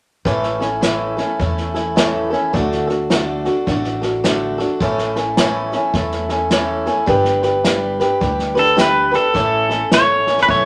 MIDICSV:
0, 0, Header, 1, 5, 480
1, 0, Start_track
1, 0, Tempo, 568182
1, 216, Time_signature, 4, 2, 24, 8
1, 8998, End_track
2, 0, Start_track
2, 0, Title_t, "Pedal steel guitar"
2, 0, Program_c, 0, 26
2, 7259, Note_on_c, 0, 69, 75
2, 7436, Note_off_c, 0, 69, 0
2, 7443, Note_on_c, 0, 71, 80
2, 7705, Note_off_c, 0, 71, 0
2, 7734, Note_on_c, 0, 69, 79
2, 8396, Note_on_c, 0, 73, 88
2, 8408, Note_off_c, 0, 69, 0
2, 8791, Note_off_c, 0, 73, 0
2, 8808, Note_on_c, 0, 71, 59
2, 8855, Note_off_c, 0, 71, 0
2, 8874, Note_on_c, 0, 73, 89
2, 8998, Note_off_c, 0, 73, 0
2, 8998, End_track
3, 0, Start_track
3, 0, Title_t, "Steel-string acoustic guitar"
3, 0, Program_c, 1, 25
3, 211, Note_on_c, 1, 45, 70
3, 213, Note_on_c, 1, 52, 72
3, 215, Note_on_c, 1, 57, 72
3, 222, Note_on_c, 1, 61, 72
3, 222, Note_on_c, 1, 64, 80
3, 224, Note_on_c, 1, 69, 80
3, 491, Note_off_c, 1, 69, 0
3, 499, Note_off_c, 1, 64, 0
3, 501, Note_on_c, 1, 69, 45
3, 505, Note_off_c, 1, 61, 0
3, 509, Note_off_c, 1, 45, 0
3, 509, Note_off_c, 1, 52, 0
3, 509, Note_on_c, 1, 64, 47
3, 510, Note_off_c, 1, 57, 0
3, 515, Note_on_c, 1, 61, 40
3, 520, Note_on_c, 1, 57, 43
3, 683, Note_off_c, 1, 57, 0
3, 684, Note_on_c, 1, 45, 66
3, 686, Note_off_c, 1, 61, 0
3, 690, Note_off_c, 1, 69, 0
3, 692, Note_off_c, 1, 64, 0
3, 694, Note_on_c, 1, 52, 71
3, 694, Note_on_c, 1, 57, 70
3, 696, Note_on_c, 1, 61, 69
3, 700, Note_on_c, 1, 69, 74
3, 702, Note_on_c, 1, 64, 74
3, 976, Note_off_c, 1, 69, 0
3, 985, Note_off_c, 1, 45, 0
3, 986, Note_off_c, 1, 64, 0
3, 986, Note_on_c, 1, 69, 52
3, 990, Note_off_c, 1, 52, 0
3, 990, Note_off_c, 1, 57, 0
3, 991, Note_off_c, 1, 61, 0
3, 997, Note_on_c, 1, 64, 51
3, 1007, Note_on_c, 1, 61, 44
3, 1013, Note_on_c, 1, 57, 39
3, 1168, Note_off_c, 1, 57, 0
3, 1172, Note_off_c, 1, 61, 0
3, 1174, Note_off_c, 1, 69, 0
3, 1178, Note_on_c, 1, 57, 50
3, 1179, Note_off_c, 1, 64, 0
3, 1182, Note_on_c, 1, 61, 56
3, 1192, Note_on_c, 1, 64, 59
3, 1199, Note_on_c, 1, 69, 55
3, 1462, Note_off_c, 1, 69, 0
3, 1471, Note_off_c, 1, 64, 0
3, 1472, Note_off_c, 1, 57, 0
3, 1472, Note_on_c, 1, 69, 51
3, 1474, Note_off_c, 1, 61, 0
3, 1481, Note_on_c, 1, 64, 48
3, 1486, Note_on_c, 1, 61, 42
3, 1493, Note_on_c, 1, 57, 37
3, 1651, Note_off_c, 1, 57, 0
3, 1654, Note_off_c, 1, 61, 0
3, 1656, Note_on_c, 1, 45, 80
3, 1657, Note_off_c, 1, 69, 0
3, 1658, Note_off_c, 1, 64, 0
3, 1661, Note_on_c, 1, 52, 77
3, 1661, Note_on_c, 1, 57, 74
3, 1664, Note_on_c, 1, 61, 82
3, 1668, Note_on_c, 1, 69, 77
3, 1669, Note_on_c, 1, 64, 82
3, 1936, Note_off_c, 1, 69, 0
3, 1944, Note_off_c, 1, 64, 0
3, 1946, Note_on_c, 1, 69, 51
3, 1951, Note_off_c, 1, 45, 0
3, 1953, Note_off_c, 1, 52, 0
3, 1954, Note_off_c, 1, 57, 0
3, 1954, Note_on_c, 1, 64, 46
3, 1955, Note_off_c, 1, 61, 0
3, 1964, Note_on_c, 1, 61, 50
3, 1969, Note_on_c, 1, 57, 41
3, 2130, Note_off_c, 1, 57, 0
3, 2134, Note_off_c, 1, 69, 0
3, 2137, Note_on_c, 1, 50, 68
3, 2138, Note_off_c, 1, 64, 0
3, 2141, Note_on_c, 1, 57, 83
3, 2143, Note_off_c, 1, 61, 0
3, 2147, Note_on_c, 1, 62, 78
3, 2149, Note_on_c, 1, 66, 84
3, 2151, Note_on_c, 1, 69, 78
3, 2417, Note_off_c, 1, 69, 0
3, 2427, Note_on_c, 1, 69, 50
3, 2432, Note_off_c, 1, 50, 0
3, 2432, Note_off_c, 1, 66, 0
3, 2433, Note_off_c, 1, 57, 0
3, 2437, Note_off_c, 1, 62, 0
3, 2442, Note_on_c, 1, 66, 44
3, 2453, Note_on_c, 1, 62, 41
3, 2614, Note_off_c, 1, 62, 0
3, 2615, Note_off_c, 1, 69, 0
3, 2618, Note_on_c, 1, 50, 70
3, 2620, Note_off_c, 1, 66, 0
3, 2624, Note_on_c, 1, 57, 78
3, 2624, Note_on_c, 1, 62, 70
3, 2631, Note_on_c, 1, 66, 76
3, 2633, Note_on_c, 1, 69, 84
3, 2905, Note_off_c, 1, 69, 0
3, 2912, Note_off_c, 1, 50, 0
3, 2914, Note_off_c, 1, 66, 0
3, 2915, Note_off_c, 1, 57, 0
3, 2915, Note_off_c, 1, 62, 0
3, 2915, Note_on_c, 1, 69, 58
3, 2924, Note_on_c, 1, 66, 48
3, 2934, Note_on_c, 1, 62, 41
3, 3096, Note_off_c, 1, 62, 0
3, 3098, Note_on_c, 1, 57, 64
3, 3099, Note_off_c, 1, 69, 0
3, 3103, Note_off_c, 1, 66, 0
3, 3106, Note_on_c, 1, 62, 60
3, 3117, Note_on_c, 1, 66, 66
3, 3120, Note_on_c, 1, 69, 64
3, 3382, Note_off_c, 1, 69, 0
3, 3392, Note_off_c, 1, 57, 0
3, 3392, Note_on_c, 1, 69, 43
3, 3396, Note_off_c, 1, 62, 0
3, 3396, Note_off_c, 1, 66, 0
3, 3406, Note_on_c, 1, 66, 43
3, 3414, Note_on_c, 1, 62, 43
3, 3577, Note_off_c, 1, 69, 0
3, 3579, Note_on_c, 1, 50, 70
3, 3580, Note_off_c, 1, 62, 0
3, 3580, Note_on_c, 1, 57, 78
3, 3582, Note_off_c, 1, 66, 0
3, 3590, Note_on_c, 1, 62, 83
3, 3592, Note_on_c, 1, 66, 85
3, 3593, Note_on_c, 1, 69, 72
3, 3859, Note_off_c, 1, 69, 0
3, 3869, Note_on_c, 1, 69, 53
3, 3873, Note_off_c, 1, 50, 0
3, 3873, Note_off_c, 1, 57, 0
3, 3873, Note_off_c, 1, 66, 0
3, 3878, Note_off_c, 1, 62, 0
3, 3884, Note_on_c, 1, 66, 44
3, 3895, Note_on_c, 1, 62, 47
3, 4056, Note_off_c, 1, 69, 0
3, 4060, Note_on_c, 1, 45, 75
3, 4062, Note_on_c, 1, 57, 81
3, 4063, Note_off_c, 1, 66, 0
3, 4063, Note_on_c, 1, 52, 84
3, 4067, Note_off_c, 1, 62, 0
3, 4069, Note_on_c, 1, 69, 80
3, 4070, Note_on_c, 1, 61, 76
3, 4070, Note_on_c, 1, 64, 88
3, 4348, Note_off_c, 1, 69, 0
3, 4353, Note_off_c, 1, 45, 0
3, 4354, Note_off_c, 1, 57, 0
3, 4355, Note_off_c, 1, 52, 0
3, 4358, Note_off_c, 1, 61, 0
3, 4358, Note_off_c, 1, 64, 0
3, 4358, Note_on_c, 1, 69, 52
3, 4369, Note_on_c, 1, 64, 52
3, 4374, Note_on_c, 1, 61, 42
3, 4377, Note_on_c, 1, 57, 39
3, 4541, Note_off_c, 1, 57, 0
3, 4541, Note_off_c, 1, 69, 0
3, 4543, Note_off_c, 1, 64, 0
3, 4545, Note_off_c, 1, 61, 0
3, 4546, Note_on_c, 1, 45, 76
3, 4550, Note_on_c, 1, 52, 80
3, 4551, Note_on_c, 1, 57, 71
3, 4553, Note_on_c, 1, 64, 78
3, 4555, Note_on_c, 1, 61, 78
3, 4558, Note_on_c, 1, 69, 89
3, 4823, Note_off_c, 1, 69, 0
3, 4832, Note_off_c, 1, 64, 0
3, 4833, Note_on_c, 1, 69, 61
3, 4836, Note_off_c, 1, 45, 0
3, 4838, Note_off_c, 1, 52, 0
3, 4839, Note_off_c, 1, 57, 0
3, 4841, Note_off_c, 1, 61, 0
3, 4842, Note_on_c, 1, 64, 50
3, 4856, Note_on_c, 1, 61, 48
3, 4862, Note_on_c, 1, 57, 47
3, 5010, Note_off_c, 1, 57, 0
3, 5015, Note_off_c, 1, 61, 0
3, 5018, Note_off_c, 1, 69, 0
3, 5021, Note_on_c, 1, 57, 60
3, 5022, Note_off_c, 1, 64, 0
3, 5025, Note_on_c, 1, 61, 56
3, 5036, Note_on_c, 1, 64, 62
3, 5036, Note_on_c, 1, 69, 66
3, 5305, Note_off_c, 1, 69, 0
3, 5311, Note_off_c, 1, 64, 0
3, 5314, Note_off_c, 1, 57, 0
3, 5315, Note_on_c, 1, 69, 47
3, 5316, Note_off_c, 1, 61, 0
3, 5321, Note_on_c, 1, 64, 44
3, 5332, Note_on_c, 1, 61, 52
3, 5340, Note_on_c, 1, 57, 42
3, 5496, Note_off_c, 1, 57, 0
3, 5496, Note_off_c, 1, 61, 0
3, 5499, Note_off_c, 1, 69, 0
3, 5502, Note_off_c, 1, 64, 0
3, 5503, Note_on_c, 1, 45, 80
3, 5503, Note_on_c, 1, 52, 77
3, 5506, Note_on_c, 1, 57, 79
3, 5506, Note_on_c, 1, 61, 82
3, 5512, Note_on_c, 1, 69, 85
3, 5515, Note_on_c, 1, 64, 79
3, 5784, Note_off_c, 1, 69, 0
3, 5794, Note_off_c, 1, 64, 0
3, 5794, Note_on_c, 1, 69, 51
3, 5795, Note_off_c, 1, 45, 0
3, 5795, Note_off_c, 1, 52, 0
3, 5796, Note_off_c, 1, 61, 0
3, 5797, Note_off_c, 1, 57, 0
3, 5804, Note_on_c, 1, 64, 53
3, 5807, Note_on_c, 1, 61, 50
3, 5813, Note_on_c, 1, 57, 42
3, 5963, Note_off_c, 1, 57, 0
3, 5966, Note_on_c, 1, 55, 86
3, 5975, Note_off_c, 1, 61, 0
3, 5977, Note_off_c, 1, 64, 0
3, 5978, Note_off_c, 1, 69, 0
3, 5978, Note_on_c, 1, 62, 86
3, 5981, Note_on_c, 1, 67, 78
3, 5987, Note_on_c, 1, 71, 87
3, 6265, Note_off_c, 1, 71, 0
3, 6266, Note_off_c, 1, 55, 0
3, 6272, Note_off_c, 1, 62, 0
3, 6274, Note_off_c, 1, 67, 0
3, 6275, Note_on_c, 1, 71, 53
3, 6284, Note_on_c, 1, 67, 51
3, 6296, Note_on_c, 1, 62, 39
3, 6453, Note_off_c, 1, 62, 0
3, 6459, Note_off_c, 1, 67, 0
3, 6459, Note_off_c, 1, 71, 0
3, 6461, Note_on_c, 1, 55, 75
3, 6463, Note_on_c, 1, 62, 65
3, 6469, Note_on_c, 1, 67, 76
3, 6474, Note_on_c, 1, 71, 79
3, 6747, Note_off_c, 1, 71, 0
3, 6753, Note_off_c, 1, 55, 0
3, 6755, Note_off_c, 1, 62, 0
3, 6757, Note_on_c, 1, 71, 50
3, 6758, Note_off_c, 1, 67, 0
3, 6769, Note_on_c, 1, 67, 45
3, 6774, Note_on_c, 1, 62, 47
3, 6930, Note_off_c, 1, 62, 0
3, 6930, Note_on_c, 1, 55, 52
3, 6934, Note_off_c, 1, 67, 0
3, 6940, Note_off_c, 1, 71, 0
3, 6940, Note_on_c, 1, 62, 58
3, 6944, Note_on_c, 1, 67, 56
3, 6952, Note_on_c, 1, 71, 63
3, 7213, Note_off_c, 1, 71, 0
3, 7218, Note_off_c, 1, 67, 0
3, 7223, Note_on_c, 1, 71, 59
3, 7228, Note_off_c, 1, 55, 0
3, 7228, Note_on_c, 1, 67, 42
3, 7229, Note_off_c, 1, 62, 0
3, 7239, Note_on_c, 1, 62, 42
3, 7394, Note_off_c, 1, 62, 0
3, 7396, Note_off_c, 1, 67, 0
3, 7396, Note_on_c, 1, 55, 71
3, 7400, Note_off_c, 1, 71, 0
3, 7404, Note_on_c, 1, 62, 81
3, 7407, Note_on_c, 1, 67, 85
3, 7410, Note_on_c, 1, 71, 89
3, 7689, Note_off_c, 1, 71, 0
3, 7700, Note_off_c, 1, 67, 0
3, 7700, Note_on_c, 1, 71, 56
3, 7701, Note_off_c, 1, 55, 0
3, 7705, Note_off_c, 1, 62, 0
3, 7710, Note_on_c, 1, 67, 52
3, 7723, Note_on_c, 1, 62, 42
3, 7887, Note_on_c, 1, 45, 76
3, 7891, Note_off_c, 1, 71, 0
3, 7892, Note_on_c, 1, 52, 70
3, 7895, Note_off_c, 1, 67, 0
3, 7895, Note_on_c, 1, 57, 65
3, 7897, Note_off_c, 1, 62, 0
3, 7899, Note_on_c, 1, 64, 81
3, 7900, Note_on_c, 1, 61, 71
3, 7901, Note_on_c, 1, 69, 81
3, 8179, Note_off_c, 1, 69, 0
3, 8187, Note_off_c, 1, 45, 0
3, 8189, Note_off_c, 1, 52, 0
3, 8189, Note_on_c, 1, 69, 49
3, 8190, Note_off_c, 1, 57, 0
3, 8190, Note_off_c, 1, 64, 0
3, 8193, Note_off_c, 1, 61, 0
3, 8200, Note_on_c, 1, 64, 39
3, 8204, Note_on_c, 1, 61, 43
3, 8212, Note_on_c, 1, 57, 41
3, 8368, Note_off_c, 1, 57, 0
3, 8376, Note_off_c, 1, 69, 0
3, 8378, Note_on_c, 1, 57, 48
3, 8380, Note_off_c, 1, 61, 0
3, 8381, Note_off_c, 1, 64, 0
3, 8390, Note_on_c, 1, 61, 55
3, 8393, Note_on_c, 1, 64, 53
3, 8396, Note_on_c, 1, 69, 58
3, 8665, Note_off_c, 1, 69, 0
3, 8669, Note_off_c, 1, 64, 0
3, 8672, Note_off_c, 1, 57, 0
3, 8675, Note_on_c, 1, 69, 49
3, 8678, Note_off_c, 1, 61, 0
3, 8679, Note_on_c, 1, 64, 44
3, 8689, Note_on_c, 1, 61, 37
3, 8691, Note_on_c, 1, 57, 40
3, 8840, Note_off_c, 1, 57, 0
3, 8840, Note_on_c, 1, 45, 66
3, 8843, Note_off_c, 1, 64, 0
3, 8845, Note_off_c, 1, 61, 0
3, 8845, Note_off_c, 1, 69, 0
3, 8849, Note_on_c, 1, 52, 65
3, 8851, Note_on_c, 1, 57, 71
3, 8853, Note_on_c, 1, 64, 75
3, 8855, Note_on_c, 1, 61, 63
3, 8856, Note_on_c, 1, 69, 84
3, 8998, Note_off_c, 1, 45, 0
3, 8998, Note_off_c, 1, 52, 0
3, 8998, Note_off_c, 1, 57, 0
3, 8998, Note_off_c, 1, 61, 0
3, 8998, Note_off_c, 1, 64, 0
3, 8998, Note_off_c, 1, 69, 0
3, 8998, End_track
4, 0, Start_track
4, 0, Title_t, "Upright bass"
4, 0, Program_c, 2, 32
4, 215, Note_on_c, 2, 33, 74
4, 1002, Note_off_c, 2, 33, 0
4, 1180, Note_on_c, 2, 40, 68
4, 1964, Note_off_c, 2, 40, 0
4, 2150, Note_on_c, 2, 38, 72
4, 2930, Note_off_c, 2, 38, 0
4, 3107, Note_on_c, 2, 33, 72
4, 3888, Note_off_c, 2, 33, 0
4, 4061, Note_on_c, 2, 33, 73
4, 4845, Note_off_c, 2, 33, 0
4, 5016, Note_on_c, 2, 40, 69
4, 5802, Note_off_c, 2, 40, 0
4, 5980, Note_on_c, 2, 31, 86
4, 6764, Note_off_c, 2, 31, 0
4, 6939, Note_on_c, 2, 38, 71
4, 7724, Note_off_c, 2, 38, 0
4, 7900, Note_on_c, 2, 33, 77
4, 8291, Note_off_c, 2, 33, 0
4, 8383, Note_on_c, 2, 33, 61
4, 8789, Note_off_c, 2, 33, 0
4, 8862, Note_on_c, 2, 35, 67
4, 8998, Note_off_c, 2, 35, 0
4, 8998, End_track
5, 0, Start_track
5, 0, Title_t, "Drums"
5, 213, Note_on_c, 9, 38, 30
5, 214, Note_on_c, 9, 36, 99
5, 298, Note_off_c, 9, 36, 0
5, 298, Note_off_c, 9, 38, 0
5, 363, Note_on_c, 9, 38, 28
5, 448, Note_off_c, 9, 38, 0
5, 514, Note_on_c, 9, 38, 27
5, 598, Note_off_c, 9, 38, 0
5, 697, Note_on_c, 9, 38, 94
5, 697, Note_on_c, 9, 44, 68
5, 782, Note_off_c, 9, 38, 0
5, 782, Note_off_c, 9, 44, 0
5, 993, Note_on_c, 9, 38, 29
5, 1078, Note_off_c, 9, 38, 0
5, 1179, Note_on_c, 9, 36, 92
5, 1179, Note_on_c, 9, 38, 30
5, 1264, Note_off_c, 9, 36, 0
5, 1264, Note_off_c, 9, 38, 0
5, 1329, Note_on_c, 9, 38, 29
5, 1414, Note_off_c, 9, 38, 0
5, 1479, Note_on_c, 9, 38, 29
5, 1563, Note_off_c, 9, 38, 0
5, 1665, Note_on_c, 9, 38, 90
5, 1665, Note_on_c, 9, 44, 65
5, 1749, Note_off_c, 9, 38, 0
5, 1749, Note_off_c, 9, 44, 0
5, 1966, Note_on_c, 9, 38, 25
5, 2050, Note_off_c, 9, 38, 0
5, 2145, Note_on_c, 9, 36, 100
5, 2147, Note_on_c, 9, 38, 30
5, 2229, Note_off_c, 9, 36, 0
5, 2232, Note_off_c, 9, 38, 0
5, 2296, Note_on_c, 9, 38, 27
5, 2380, Note_off_c, 9, 38, 0
5, 2443, Note_on_c, 9, 38, 30
5, 2527, Note_off_c, 9, 38, 0
5, 2621, Note_on_c, 9, 38, 88
5, 2621, Note_on_c, 9, 44, 76
5, 2706, Note_off_c, 9, 38, 0
5, 2706, Note_off_c, 9, 44, 0
5, 2913, Note_on_c, 9, 38, 29
5, 2998, Note_off_c, 9, 38, 0
5, 3100, Note_on_c, 9, 38, 29
5, 3102, Note_on_c, 9, 36, 91
5, 3184, Note_off_c, 9, 38, 0
5, 3186, Note_off_c, 9, 36, 0
5, 3245, Note_on_c, 9, 38, 31
5, 3330, Note_off_c, 9, 38, 0
5, 3397, Note_on_c, 9, 38, 29
5, 3481, Note_off_c, 9, 38, 0
5, 3584, Note_on_c, 9, 38, 91
5, 3584, Note_on_c, 9, 44, 71
5, 3668, Note_off_c, 9, 38, 0
5, 3668, Note_off_c, 9, 44, 0
5, 3878, Note_on_c, 9, 38, 30
5, 3962, Note_off_c, 9, 38, 0
5, 4058, Note_on_c, 9, 38, 32
5, 4059, Note_on_c, 9, 36, 95
5, 4142, Note_off_c, 9, 38, 0
5, 4144, Note_off_c, 9, 36, 0
5, 4207, Note_on_c, 9, 38, 27
5, 4292, Note_off_c, 9, 38, 0
5, 4356, Note_on_c, 9, 38, 30
5, 4440, Note_off_c, 9, 38, 0
5, 4539, Note_on_c, 9, 38, 100
5, 4539, Note_on_c, 9, 44, 78
5, 4623, Note_off_c, 9, 38, 0
5, 4623, Note_off_c, 9, 44, 0
5, 4833, Note_on_c, 9, 38, 29
5, 4917, Note_off_c, 9, 38, 0
5, 5014, Note_on_c, 9, 38, 30
5, 5016, Note_on_c, 9, 36, 87
5, 5099, Note_off_c, 9, 38, 0
5, 5101, Note_off_c, 9, 36, 0
5, 5165, Note_on_c, 9, 38, 31
5, 5249, Note_off_c, 9, 38, 0
5, 5312, Note_on_c, 9, 38, 29
5, 5396, Note_off_c, 9, 38, 0
5, 5496, Note_on_c, 9, 38, 87
5, 5496, Note_on_c, 9, 44, 68
5, 5580, Note_off_c, 9, 38, 0
5, 5580, Note_off_c, 9, 44, 0
5, 5793, Note_on_c, 9, 38, 28
5, 5878, Note_off_c, 9, 38, 0
5, 5972, Note_on_c, 9, 38, 30
5, 5976, Note_on_c, 9, 36, 100
5, 6056, Note_off_c, 9, 38, 0
5, 6061, Note_off_c, 9, 36, 0
5, 6120, Note_on_c, 9, 38, 27
5, 6205, Note_off_c, 9, 38, 0
5, 6271, Note_on_c, 9, 38, 29
5, 6356, Note_off_c, 9, 38, 0
5, 6458, Note_on_c, 9, 38, 100
5, 6458, Note_on_c, 9, 44, 79
5, 6543, Note_off_c, 9, 38, 0
5, 6543, Note_off_c, 9, 44, 0
5, 6755, Note_on_c, 9, 38, 32
5, 6840, Note_off_c, 9, 38, 0
5, 6938, Note_on_c, 9, 36, 93
5, 6938, Note_on_c, 9, 38, 31
5, 7022, Note_off_c, 9, 36, 0
5, 7023, Note_off_c, 9, 38, 0
5, 7088, Note_on_c, 9, 38, 30
5, 7172, Note_off_c, 9, 38, 0
5, 7232, Note_on_c, 9, 38, 28
5, 7316, Note_off_c, 9, 38, 0
5, 7416, Note_on_c, 9, 38, 96
5, 7416, Note_on_c, 9, 44, 69
5, 7501, Note_off_c, 9, 38, 0
5, 7501, Note_off_c, 9, 44, 0
5, 7713, Note_on_c, 9, 38, 29
5, 7797, Note_off_c, 9, 38, 0
5, 7896, Note_on_c, 9, 38, 33
5, 7897, Note_on_c, 9, 36, 96
5, 7981, Note_off_c, 9, 36, 0
5, 7981, Note_off_c, 9, 38, 0
5, 8194, Note_on_c, 9, 38, 30
5, 8278, Note_off_c, 9, 38, 0
5, 8376, Note_on_c, 9, 38, 95
5, 8376, Note_on_c, 9, 44, 77
5, 8461, Note_off_c, 9, 38, 0
5, 8461, Note_off_c, 9, 44, 0
5, 8673, Note_on_c, 9, 38, 31
5, 8757, Note_off_c, 9, 38, 0
5, 8764, Note_on_c, 9, 38, 33
5, 8849, Note_off_c, 9, 38, 0
5, 8859, Note_on_c, 9, 36, 95
5, 8859, Note_on_c, 9, 38, 29
5, 8943, Note_off_c, 9, 36, 0
5, 8944, Note_off_c, 9, 38, 0
5, 8998, End_track
0, 0, End_of_file